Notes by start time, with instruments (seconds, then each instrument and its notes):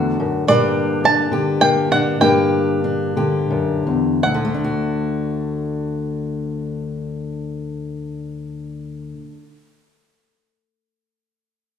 Already playing: steel-string acoustic guitar E2 D3 A3 D4 F#4
0.20 steel-string acoustic guitar F#2
0.47 steel-string acoustic guitar G2 A#3 D4 G4, five-string banjo D5
1.04 steel-string acoustic guitar D4, five-string banjo A5
1.31 steel-string acoustic guitar D3 G4
1.61 steel-string acoustic guitar A#3, five-string banjo G5
1.91 steel-string acoustic guitar D4, five-string banjo F#5
2.20 steel-string acoustic guitar G2 A#3 D4 G4, five-string banjo G5
2.84 steel-string acoustic guitar D4
3.17 steel-string acoustic guitar D3 G4
3.50 steel-string acoustic guitar F#2
3.87 steel-string acoustic guitar E2
4.23 steel-string acoustic guitar D2, five-string banjo F#5
4.34 steel-string acoustic guitar D3
4.45 steel-string acoustic guitar A3
4.54 steel-string acoustic guitar D4
4.64 steel-string acoustic guitar F#4